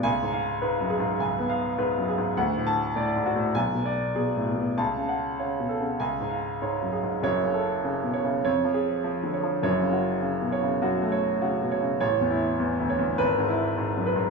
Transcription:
<<
  \new Staff \with { instrumentName = "Grand piano" } { \time 4/4 \key fis \minor \tempo 4 = 101 << { gis''4 r2. | r8 a''4 r8 gis''4 r4 | a''4 r4 gis''4 r4 | cis''4 r4 cis''4 r4 |
cis''4 r2. | cis''4 r4 b'4 r4 | } \\ { r8 eis''8 b'8 gis'8 gis''8 eis''8 b'8 gis'8 | fis''4 d''8 fis'8 r8 d''8 gis'8 b,8 | r8 fis''8 cis''8 a'8 r8 eis''8 cis''8 gis'8 | r8 a'8 cis8 cis''8 r8 gis'8 eis8 cis''8 |
r8 fis'4 cis''8 fis'8 cis''8 fis'8 cis''8 | r8 e'4 cis''8 r8 e'8 gis,8 b'8 | } >> }
  \new Staff \with { instrumentName = "Grand piano" } { \clef bass \time 4/4 \key fis \minor \tuplet 3/2 { cis,8 gis,4 gis,8 fis,8 gis,8 cis,8 b4 gis,8 fis,8 gis,8 } | \tuplet 3/2 { d,8 a,4 a,8 gis,8 a,8 b,,8 b,4 b,8 a,8 b,8 } | \tuplet 3/2 { cis,8 cis4 cis8 b,8 cis8 cis,8 gis,4 gis,8 fis,8 gis,8 } | \tuplet 3/2 { <fis,, fis,>8 cis4 r8 b,8 cis8 eis,8 eis4 r8 d8 eis8 } |
\tuplet 3/2 { <fis,, fis,>8 cis4 cis8 b,8 cis8 fis,8 a4 cis8 b,8 cis8 } | \tuplet 3/2 { a,,8 e,4 e,8 d,8 e,8 gis,,8 gis,4 r8 fis,8 gis,8 } | }
>>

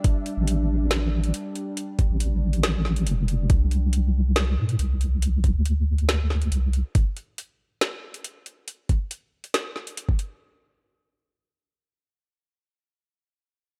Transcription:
<<
  \new Staff \with { instrumentName = "Synth drone" } { \time 4/4 \key c \mixolydian \tempo 4 = 139 <g d'>1~ | <g d'>1 | r1 | r1 |
r1 | r1 | r1 | r1 | }
  \new Staff \with { instrumentName = "Wobble bass" } { \clef bass \time 4/4 \key c \mixolydian r8. a,,2~ a,,16 r4 | r8. a,,2~ a,,16 f,,4 | c,2~ c,8 a,8 c,4~ | c,8. d,2~ d,16 c,8. r16 |
r1 | r1 | r1 | r1 | }
  \new DrumStaff \with { instrumentName = "Drums" } \drummode { \time 4/4 <hh bd>8 hh8 hh4 <hh sn>8. hh16 hh8 hh8 | hh8 <hh bd>8 hh8. hh16 <hh sn>8 sn16 hh16 hh8 hh8 | <hh bd>8 hh8 hh4 <hh sn>8. hh16 hh8 hh8 | hh8 <hh bd>8 hh8. hh16 <hh sn>8 sn16 hh16 hh8 hh8 |
<hh bd>8 hh8 hh4 <hh sn>8. hh16 hh8 hh8 | hh8 <hh bd>8 hh8. hh16 <hh sn>8 sn16 hh16 hh16 bd16 hh8 | r4 r4 r4 r4 | r4 r4 r4 r4 | }
>>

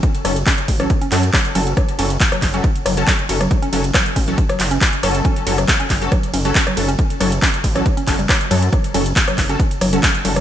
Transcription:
<<
  \new Staff \with { instrumentName = "Synth stab" } { \time 4/4 \key fis \minor \tempo 4 = 138 r8 <fis cis' a'>16 r4 <fis cis' a'>16 r8 <fis cis' a'>16 r8. <fis cis' a'>8 | r8 <fis cis' a'>16 r4 <fis cis' a'>16 r8. <fis cis' a'>8 r16 <fis cis' a'>16 r16 | r8 <fis cis' a'>16 r4 <fis cis' a'>16 r4. <fis cis' a'>8~ | <fis cis' a'>8 <fis cis' a'>16 r4 <fis cis' a'>16 r8. <fis cis' a'>8 r16 <fis cis' a'>16 r16 |
r8 <fis cis' a'>16 r4 <fis cis' a'>16 r8 <fis cis' a'>16 r8. <fis cis' a'>8 | r8 <fis cis' a'>16 r4 <fis cis' a'>16 r8. <fis cis' a'>8 r16 <fis cis' a'>16 r16 | }
  \new Staff \with { instrumentName = "Synth arpeggio sound" } { \clef bass \time 4/4 \key fis \minor r8 fis16 r16 cis'16 r8 fis16 r16 cis'16 r8 fis16 r16 cis'16 r16 | fis16 r16 cis'16 r8 fis16 r16 cis'16 r8 fis16 r16 cis'16 r8 fis16 | r16 cis'16 r8 fis16 r16 cis'16 r8 fis16 r16 cis'16 r8 fis16 r16 | cis'16 r8 fis16 r16 cis'16 r8 fis16 r16 cis'16 r8 fis16 r16 cis'16 |
r8 fis16 r16 cis'16 r8 fis16 r16 cis'16 cis'16 g16 fis16 r16 fis16 r16 | fis16 r16 cis'16 r8 fis16 r16 cis'16 r8 fis16 r16 cis'16 r8 fis16 | }
  \new Staff \with { instrumentName = "Analog synth bass" } { \clef bass \time 4/4 \key fis \minor r8 fis,,8 r8 a,,8 r8 fis,8 r8 fis,,8 | r8 fis,,8 r8 fis,,8 r8 fis,,8 r8 fis,,8 | r8 fis,,8 r8 a,,8 r8 fis,,8 r8 fis,,8 | r8 fis,,8 r8 fis,,8 r8 fis,,8 r8 fis,,8 |
r8 fis,,8 r8 a,,8 r8 fis,,8 r8 fis,8 | r8 fis,,8 r8 fis,,8 r8 fis,,8 r8 fis,,8 | }
  \new DrumStaff \with { instrumentName = "Drums" } \drummode { \time 4/4 <hh bd cymr>16 hh16 <hho cymr ss>16 hh16 <hc hh bd cymr>16 hh16 <hho bd cymr>16 <hh ss>16 <hh bd cymr>16 hh16 <hc hho cymr>16 hh16 <hc hh bd cymr ss>16 hh16 <hho cymr>16 hh16 | <hh bd cymr ss>16 hh16 <hho cymr>16 hh16 <hc hh bd cymr>16 <hh ss>16 <hc hho bd cymr>16 hh16 <hh bd cymr>16 hh16 <hho cymr ss>16 hh16 <hc hh bd cymr>16 hh16 <hho cymr>16 <hh ss>16 | <hh bd cymr>16 hh16 <hho cymr>16 hh16 <hc hh bd cymr ss>16 hh16 <hho bd cymr>16 hh16 <hh bd cymr>16 <hh ss>16 <hc hho cymr>16 hh16 <hc hh bd cymr>16 hh16 <hho cymr ss>16 hh16 | <hh bd cymr>16 hh16 <hho cymr>16 <hh ss>16 <hc hh bd cymr>16 hh16 <hc hho bd cymr>16 hh16 <hh bd cymr ss>16 hh16 <hho cymr>16 hh16 <hc hh bd cymr>16 <hh ss>16 <hho cymr>16 hh16 |
<hh bd cymr>16 hh16 <hho cymr ss>16 hh16 <hc hh bd cymr>16 hh16 <hho bd cymr>16 <hh ss>16 <hh bd cymr>16 hh16 <hc hho bd cymr>16 hh16 <hc hh bd cymr ss>16 hh16 <hho cymr>16 hh16 | <hh bd cymr ss>16 hh16 <hho cymr>16 hh16 <hc hh bd cymr>16 <hh ss>16 <hc hho bd cymr>16 hh16 <hh bd cymr>16 hh16 <hho cymr ss>16 hh16 <hc hh bd cymr>16 hh16 <hho cymr>16 <hh ss>16 | }
>>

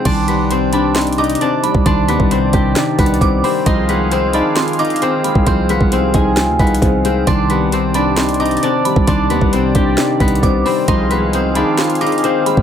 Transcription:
<<
  \new Staff \with { instrumentName = "Synth bell" } { \time 4/4 \key c \minor \tempo 4 = 133 c'''4. b''8 c'''8 d'''4 b''8 | c'''2. d'''8 b''8 | c'''4. b''8 c'''8 d'''4 b''8 | c'''2 r2 |
c'''4. b''8 c'''8 d'''4 b''8 | c'''2. d'''8 b''8 | c'''4. b''8 c'''8 d'''4 b''8 | }
  \new Staff \with { instrumentName = "Guzheng" } { \time 4/4 \key c \minor <d' d''>8 <b b'>8 <c' c''>8 <d' d''>8 r8 <ees' ees''>8 <d' d''>8 r8 | <d' d''>8 <b b'>8 <c' c''>8 <g' g''>4 <b b'>4 <c' c''>8 | <ees' ees''>8 <b b'>8 <c' c''>8 <d' d''>8 r8 <ees' ees''>8 <c' c''>8 r8 | <c' c''>8 <b b'>8 <c' c''>8 <aes' aes''>4 <b b'>4 <c' c''>8 |
<d' d''>8 <b b'>8 <c' c''>8 <d' d''>8 r8 <ees' ees''>8 <d' d''>8 r8 | <d' d''>8 <b b'>8 <c' c''>8 <g' g''>4 <b b'>4 <c' c''>8 | <ees' ees''>8 <b b'>8 <c' c''>8 <d' d''>8 r8 <ees' ees''>8 <c' c''>8 r8 | }
  \new Staff \with { instrumentName = "Analog synth pad" } { \time 4/4 \key c \minor <c ees d''>1~ | <c ees d''>1 | <aes' f''>1~ | <aes' f''>1 |
<c ees d''>1~ | <c ees d''>1 | <aes' f''>1 | }
  \new Staff \with { instrumentName = "Grand piano" } { \time 4/4 \key c \minor ees8 g8 c'8 d'8 ees'8 d'8 c'8 g8 | ees8 g8 c8 d'8 ees'8 d'8 c'8 g8 | f8 aes8 c'8 ees'8 f'8 ees'8 c'8 aes8 | f8 aes8 c8 ees'8 f'8 ees'8 c'8 aes8 |
ees8 g8 c'8 d'8 ees'8 d'8 c'8 g8 | ees8 g8 c8 d'8 ees'8 d'8 c'8 g8 | f8 aes8 c'8 ees'8 f'8 ees'8 c'8 aes8 | }
  \new Staff \with { instrumentName = "808-style bass" } { \clef bass \time 4/4 \key c \minor c,2. r8. c,16 | c,8 ees,16 c,8. c,8 r8 c,8 c,8 r8 | c,4.~ c,16 r2 c,16 | c,8. c,8. c,8. d,16 c,8 c,4 |
c,2. r8. c,16 | c,8 ees,16 c,8. c,8 r8 c,8 c,8 r8 | c,4.~ c,16 r2 c,16 | }
  \new DrumStaff \with { instrumentName = "Drums" } \drummode { \time 4/4 <cymc hh bd>8 hh8 hh8 hh8 <hh sn>32 hh32 hh32 hh32 hh32 hh32 hh32 hh32 hh8 hh16 bd16 | <hh bd>8 hh16 bd16 hh8 <hh bd>8 \tuplet 3/2 { <hh sn>16 r16 r16 <hh bd>16 hh16 hh16 } <hh bd>8 hho8 | <hh bd>8 hh8 hh8 hh8 <hh sn>32 hh32 hh32 hh32 hh32 hh32 hh32 hh32 hh8 hh16 bd16 | <hh bd>8 hh16 bd16 hh8 <hh bd>8 \tuplet 3/2 { <hh sn>16 r16 r16 <hh bd>16 hh16 hh16 } <hh bd>8 hh8 |
<hh bd>8 hh8 hh8 hh8 <hh sn>32 hh32 hh32 hh32 hh32 hh32 hh32 hh32 hh8 hh16 bd16 | <hh bd>8 hh16 bd16 hh8 <hh bd>8 \tuplet 3/2 { <hh sn>16 r16 r16 <hh bd>16 hh16 hh16 } <hh bd>8 hho8 | <hh bd>8 hh8 hh8 hh8 <hh sn>32 hh32 hh32 hh32 hh32 hh32 hh32 hh32 hh8 hh16 bd16 | }
>>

